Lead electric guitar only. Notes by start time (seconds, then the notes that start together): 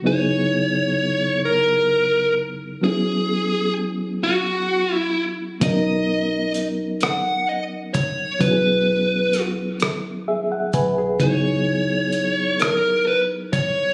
0.07 C#5
1.45 A#4
2.84 G#4
4.23 F#4
4.93 E4
5.63 D#5
7.03 F#5
7.49 D#5
7.94 C#5
8.41 B4
11.21 C#5
12.61 A#4
13.07 B4
13.53 C#5